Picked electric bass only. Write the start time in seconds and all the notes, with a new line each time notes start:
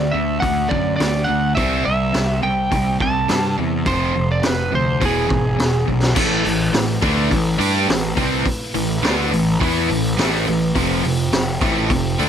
0.14 D2
0.42 D2
0.71 F#2
1.00 D2
1.29 D2
1.57 C2
1.87 C2
2.14 C2
2.44 C2
2.72 C2
3.01 C2
3.30 G2
3.59 E2
3.86 F1
4.16 F1
4.44 F1
4.73 D2
5.01 E1
5.30 G#1
5.60 E1
5.88 B1
6.16 A1
6.45 A1
6.74 A1
7.03 D2
7.32 A1
7.60 G2
7.89 A1
8.17 C2
8.46 muted picked electric bass stroke
8.75 A1
9.04 D2
9.33 A1
9.61 E2
9.90 A1
10.19 A1
10.47 A1
10.76 F1
11.04 F1
11.33 F1
11.62 A1
11.90 F1
12.20 D2